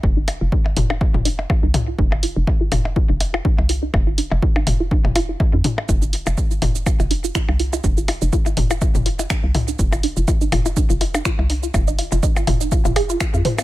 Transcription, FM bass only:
X:1
M:4/4
L:1/16
Q:"Swing 16ths" 1/4=123
K:Cm
V:1 name="FM bass" clef=bass
F,,,3 F,,, z2 F,,,3 F,,,3 z C,,3 | F,,,3 F,,, z2 F,,,3 F,,,3 z C,,3 | F,,,3 F,,, z2 F,,,3 F,,,3 z F,, z2 | F,,,3 F,,, z2 F,,,3 F,,,3 z C,,3 |
F,,,3 F,,, z2 F,,,3 F,,,3 z C,,3 | F,,,3 F,,, z2 F,,,3 F,,,3 z C,,3 | F,,,3 F,,, z2 F,,,3 F,,,3 z F,, z2 |]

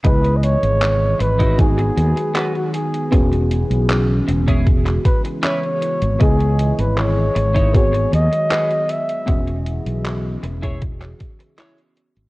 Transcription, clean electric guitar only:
X:1
M:4/4
L:1/16
Q:1/4=78
K:E
V:1 name="Clean electric guitar"
z6 z [DEF] z4 [B,FB] z3 | z6 z [CEG] z4 [CEB] z3 | z6 z [DEc] z4 [FGB] z3 | z6 z [EGc] z4 [EGc] z3 |]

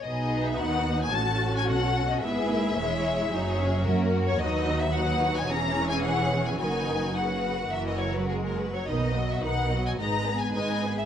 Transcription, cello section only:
X:1
M:4/4
L:1/8
Q:1/4=109
K:B
V:1 name="Cello section" clef=bass
B,,2 D,2 =A,,2 B,,2 | G,,2 E,,2 F,,2 F,2 | D,,4 E,,4 | F,,4 F,,3 z |
B,,2 B,,2 G,,2 G,,2 |]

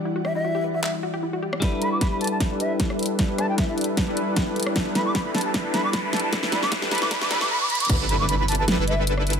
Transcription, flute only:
X:1
M:4/4
L:1/16
Q:"Swing 16ths" 1/4=153
K:G
V:1 name="Flute"
z2 e e3 z e e z6 z | z2 b d' b b a a z2 e z4 z | z2 a g e e z8 z2 | z2 b d' b b a a z2 b d' b b a a |
z2 b d' z2 b d' b d' b d' b d' b d' | z2 b d' b b a a z2 e z4 z |]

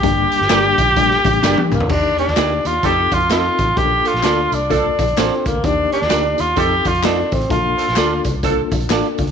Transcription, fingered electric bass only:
X:1
M:4/4
L:1/16
Q:"Swing" 1/4=128
K:Bb
V:1 name="Fingered electric bass" clef=bass
G,,,2 z G,,, G,,,2 B,,,4 A,,,2 G,,, z _D,, =D,, | E,,2 z E,, D,,2 E,,2 F,,2 F,,4 A,,,2 | B,,,2 z B,,, D,,2 C,,4 B,,,2 A,,, z _D,, =D,, | E,,2 z E,, D,,2 E,,2 F,,2 F,,4 A,,,2 |
B,,,2 z B,,, D,,2 C,,4 B,,,2 A,,, z _D,, z |]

